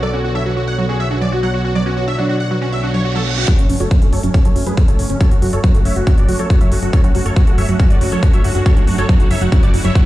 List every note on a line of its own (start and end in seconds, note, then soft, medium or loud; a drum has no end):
0.00 3.46 B1 medium
0.00 3.44 D3 medium
0.00 0.12 F#3 medium
0.00 3.44 B3 medium
0.00 0.80 A4 medium
0.00 3.44 C#5 medium
0.00 0.11 D5 loud
0.13 0.17 C#4 loud
0.13 0.21 F#4 medium
0.24 0.31 F#3 medium
0.24 0.32 F#4 medium
0.35 0.39 D4 medium
0.35 0.43 E5 medium
0.46 0.52 F#3 medium
0.46 0.54 F#4 medium
0.56 0.65 F#4 medium
0.56 0.63 F#4 medium
0.56 0.65 F#4 medium
0.67 0.75 F#5 medium
0.78 0.82 F#3 medium
0.78 0.86 F#4 medium
0.89 0.95 C#4 medium
0.89 0.97 F#4 medium
0.89 1.30 G#4 medium
1.00 1.06 F#3 medium
1.00 1.08 E5 medium
1.10 1.17 D4 medium
1.10 1.19 F#4 medium
1.21 1.28 F#3 medium
1.21 1.29 D5 medium
1.32 1.39 F#4 medium
1.32 1.40 F#4 medium
1.32 2.10 F#4 medium
1.32 1.40 F#4 medium
1.43 1.47 F#3 loud
1.43 1.51 F#5 medium
1.54 1.62 F#4 medium
1.64 1.71 C#4 medium
1.64 1.73 F#4 medium
1.75 1.85 F#3 medium
1.75 1.83 D5 medium
1.75 1.83 D5 loud
1.86 1.90 C#4 loud
1.86 1.94 F#4 medium
1.97 2.03 F#3 medium
1.97 2.05 F#4 medium
2.08 2.12 D4 medium
2.08 2.16 E5 medium
2.18 2.25 F#3 medium
2.18 3.39 D4 medium
2.18 2.26 F#4 medium
2.29 2.36 F#4 medium
2.29 2.37 F#4 medium
2.40 2.48 F#5 medium
2.51 2.55 F#3 medium
2.51 2.59 F#4 medium
2.62 2.68 C#4 loud
2.62 2.70 F#4 medium
2.62 reverse cymbal medium
2.72 2.79 F#3 medium
2.72 2.80 E5 medium
2.83 2.90 D4 medium
2.83 2.91 F#4 medium
2.94 3.00 F#3 medium
2.94 3.02 C#5 medium
3.05 3.11 F#4 medium
3.05 3.13 F#4 medium
3.15 3.19 F#3 loud
3.15 3.24 A4 medium
3.26 3.34 F#4 medium
3.37 3.44 C#4 medium
3.37 3.45 F#4 medium
3.48 3.58 F#3 medium
3.48 10.05 F#3 medium
3.48 10.05 A3 medium
3.48 10.05 C#4 medium
3.48 3.56 G#4 medium
3.48 3.56 B4 medium
3.48 3.56 B4 loud
3.48 kick loud
3.48 closed hi-hat medium
3.48 riser medium
3.59 3.66 F#1 medium
3.59 3.63 C#4 loud
3.59 3.67 C#4 medium
3.59 closed hi-hat medium
3.69 3.76 F#1 medium
3.69 3.76 F#3 medium
3.69 3.78 C#4 medium
3.69 open hi-hat loud
3.80 3.87 F#1 medium
3.80 3.84 F#4 medium
3.80 3.88 A4 medium
3.80 3.88 C#5 medium
3.80 closed hi-hat medium
3.91 3.98 F#3 medium
3.91 3.99 C#4 medium
3.91 kick loud
3.91 closed hi-hat medium
4.02 4.09 F#1 medium
4.02 4.10 C#4 medium
4.02 4.08 A4 medium
4.02 closed hi-hat medium
4.13 4.19 F#1 loud
4.13 4.21 A4 medium
4.13 4.21 C#5 medium
4.13 open hi-hat loud
4.23 4.30 F#1 medium
4.23 4.27 F#3 medium
4.23 4.32 C#4 medium
4.23 closed hi-hat medium
4.34 4.41 C#4 loud
4.34 4.42 C#4 medium
4.34 kick loud
4.34 closed hi-hat medium
4.45 4.52 F#1 medium
4.45 4.52 F#3 medium
4.45 4.53 A4 medium
4.45 4.53 C#5 medium
4.45 closed hi-hat medium
4.56 4.63 F#1 medium
4.56 4.64 C#4 medium
4.56 4.62 F#4 medium
4.56 open hi-hat loud
4.67 4.73 F#2 medium
4.67 4.73 F#3 medium
4.67 4.75 G#4 medium
4.67 4.75 B4 medium
4.67 closed hi-hat medium
4.77 4.85 C#4 medium
4.77 4.84 A4 medium
4.77 kick loud
4.77 closed hi-hat medium
4.88 4.95 F#1 medium
4.88 4.92 F#3 loud
4.88 4.96 A4 medium
4.88 4.96 C#5 medium
4.88 closed hi-hat medium
4.99 5.06 F#1 medium
4.99 5.07 C#4 medium
4.99 open hi-hat loud
5.10 5.17 F#1 medium
5.10 5.16 C#4 medium
5.10 5.18 C#4 medium
5.10 closed hi-hat medium
5.21 5.30 F#3 loud
5.21 5.29 A4 medium
5.21 5.29 C#5 loud
5.21 kick loud
5.21 closed hi-hat medium
5.31 5.38 F#1 medium
5.31 5.35 C#4 loud
5.31 5.39 F#4 medium
5.31 closed hi-hat medium
5.42 5.49 F#1 medium
5.42 5.49 F#3 medium
5.42 5.50 F#4 medium
5.42 open hi-hat loud
5.53 5.60 F#1 medium
5.53 5.57 F#4 medium
5.53 5.61 A4 medium
5.53 5.61 C#5 medium
5.53 closed hi-hat medium
5.64 5.70 F#3 medium
5.64 5.72 F#4 medium
5.64 kick loud
5.64 closed hi-hat medium
5.74 5.81 F#1 medium
5.74 5.83 F#4 medium
5.74 5.81 A4 medium
5.74 closed hi-hat medium
5.85 5.92 F#1 loud
5.85 5.93 C#5 medium
5.85 5.93 E5 medium
5.85 open hi-hat loud
5.96 6.03 F#1 medium
5.96 6.00 F#3 medium
5.96 6.04 F#4 medium
5.96 closed hi-hat medium
6.07 6.13 C#4 loud
6.07 6.15 F#4 medium
6.07 kick loud
6.07 closed hi-hat medium
6.18 6.25 F#1 medium
6.18 6.24 F#3 medium
6.18 6.26 F#4 medium
6.18 6.26 D5 medium
6.18 closed hi-hat medium
6.28 6.35 F#1 medium
6.28 6.37 F#4 medium
6.28 6.35 F#4 medium
6.28 6.37 F#4 medium
6.28 open hi-hat loud
6.39 6.46 F#2 medium
6.39 6.46 F#3 medium
6.39 6.47 A4 medium
6.39 6.47 C#5 medium
6.39 closed hi-hat medium
6.50 6.58 F#4 medium
6.50 6.57 A4 medium
6.50 kick loud
6.50 closed hi-hat medium
6.61 6.68 F#1 medium
6.61 6.65 F#3 loud
6.61 6.69 C#5 medium
6.61 6.69 E5 medium
6.61 closed hi-hat medium
6.72 6.78 F#1 loud
6.72 6.80 F#4 medium
6.72 open hi-hat loud
6.82 6.89 F#1 medium
6.82 6.89 C#4 medium
6.82 6.91 F#4 medium
6.82 closed hi-hat medium
6.93 7.03 F#3 medium
6.93 7.01 A4 medium
6.93 7.01 C#5 loud
6.93 kick loud
6.93 closed hi-hat medium
7.04 7.11 F#1 medium
7.04 7.08 C#4 loud
7.04 7.12 F#4 medium
7.04 closed hi-hat medium
7.15 7.22 F#1 medium
7.15 7.21 F#3 medium
7.15 7.23 F#4 medium
7.15 open hi-hat loud
7.26 7.32 F#1 medium
7.26 7.30 F#4 medium
7.26 7.34 A4 medium
7.26 7.34 C#5 medium
7.26 closed hi-hat medium
7.36 7.43 F#3 medium
7.36 7.44 F#4 medium
7.36 kick loud
7.36 closed hi-hat medium
7.47 7.54 F#1 medium
7.47 7.55 F#4 medium
7.47 7.54 A4 medium
7.47 closed hi-hat medium
7.58 7.65 F#1 loud
7.58 7.66 C#5 medium
7.58 7.66 E5 medium
7.58 open hi-hat loud
7.69 7.76 F#1 medium
7.69 7.73 F#3 medium
7.69 7.77 F#4 medium
7.69 closed hi-hat medium
7.79 7.86 C#4 loud
7.79 7.88 F#4 medium
7.79 kick loud
7.79 closed hi-hat medium
7.90 7.97 F#1 medium
7.90 7.97 F#3 medium
7.90 7.98 F#4 medium
7.90 7.98 D5 medium
7.90 closed hi-hat medium
8.01 8.08 F#1 medium
8.01 8.09 F#4 medium
8.01 8.08 F#4 medium
8.01 open hi-hat loud
8.12 8.19 F#2 medium
8.12 8.18 F#3 medium
8.12 8.20 A4 medium
8.12 8.20 C#5 medium
8.12 closed hi-hat medium
8.23 8.31 F#4 medium
8.23 8.29 A4 medium
8.23 kick loud
8.23 closed hi-hat medium
8.33 8.40 F#1 medium
8.33 8.37 F#3 loud
8.33 8.42 C#5 medium
8.33 8.42 E5 medium
8.33 closed hi-hat medium
8.44 8.51 F#1 medium
8.44 8.52 F#4 medium
8.44 open hi-hat loud
8.55 8.62 F#1 medium
8.55 8.62 C#4 medium
8.55 8.63 F#4 medium
8.55 closed hi-hat medium
8.66 8.76 F#3 loud
8.66 8.74 A4 medium
8.66 8.74 C#5 loud
8.66 kick loud
8.66 closed hi-hat medium
8.77 8.84 F#1 medium
8.77 8.81 C#4 loud
8.77 8.85 F#4 medium
8.77 closed hi-hat medium
8.87 8.94 F#1 loud
8.87 8.94 F#3 medium
8.87 8.96 F#4 medium
8.87 open hi-hat loud
8.98 9.05 F#1 medium
8.98 9.02 F#4 medium
8.98 9.06 A4 medium
8.98 9.06 C#5 loud
8.98 9.06 C#5 medium
8.98 closed hi-hat medium
9.09 9.16 F#3 medium
9.09 9.17 F#4 medium
9.09 kick loud
9.09 closed hi-hat medium
9.20 9.27 F#1 medium
9.20 9.28 F#4 medium
9.20 9.26 A4 medium
9.20 closed hi-hat medium
9.31 9.37 F#1 loud
9.31 9.39 C#5 medium
9.31 9.39 E5 medium
9.31 open hi-hat loud
9.41 9.48 F#1 medium
9.41 9.45 F#3 medium
9.41 9.49 F#4 medium
9.41 9.50 F#4 medium
9.41 closed hi-hat medium
9.52 9.59 C#4 loud
9.52 9.60 F#4 medium
9.52 kick loud
9.52 closed hi-hat medium
9.63 9.70 F#1 medium
9.63 9.70 F#3 medium
9.63 9.71 F#4 medium
9.63 9.71 D5 medium
9.63 closed hi-hat medium
9.74 9.81 F#1 loud
9.74 9.82 F#4 medium
9.74 9.80 F#4 medium
9.74 9.82 F#4 medium
9.74 open hi-hat loud
9.84 9.91 F#1 medium
9.84 9.91 F#3 medium
9.84 9.93 C#5 medium
9.84 9.93 E5 medium
9.84 closed hi-hat medium
9.95 10.03 F#4 medium
9.95 10.02 A4 medium
9.95 kick loud
9.95 closed hi-hat medium